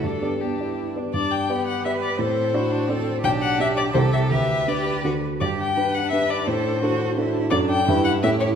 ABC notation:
X:1
M:3/4
L:1/8
Q:1/4=170
K:G
V:1 name="Violin"
A2 G2 z2 | d g2 f e d | c4- c z | g f e d c e |
e2 d2 z2 | d g2 f e d | c4- c z | [K:Edor] d g2 f e c |]
V:2 name="Cello"
D2 B, E2 D | z2 G2 B2 | A2 F2 A2 | G6 |
B4- B z | G2 B4 | A2 F2 E2 | [K:Edor] D2 E2 E2 |]
V:3 name="Grand piano"
G,, [B,Gd]2 [B,Gd]2 [B,Gd] | G,,2 [B,Gd]2 [B,Gd]2 | A,,2 [DFd]2 [DFd]2 | B,,,2 [DGd]2 [C,,EAc]2 |
D,,2 [DGB]2 [D,,DFA]2 | G,,2 [DGB]2 [DGB]2 | A,,2 [DFA]2 [DFA]2 | [K:Edor] [F,,DFA]2 [G,,DEB]2 [A,,CGA]2 |]
V:4 name="Violin"
D2 D3 z | D2 B,4 | C2 E D C2 | D4 A2 |
G2 G2 F z | D6- | D6 | [K:Edor] D2 E2 G2 |]